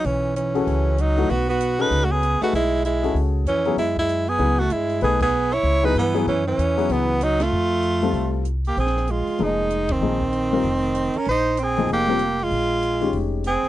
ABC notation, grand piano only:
X:1
M:4/4
L:1/8
Q:"Swing" 1/4=192
K:F#dor
V:1 name="Grand piano"
z3 [CFGA]3 z [E,A,DF] | z3 [CFGA]3 z [A,DGB] | z3 [CFGA]3 z [F,B,EG] | z4 [F,B,EG] z3 |
[A,DGB] z4 [F,B,EG] z [F,B,EG] | z3 [F,B,EG]3 z2 | z3 [=G,=C=FA]3 z2 | [K:Bbdor] z4 [F,B,EA]3 z |
[F,B,EA] z2 [G,CFB] z4 | z3 [F,B,EA]2 [G,CFB] z2 | z3 [E,A,DG]3 z2 |]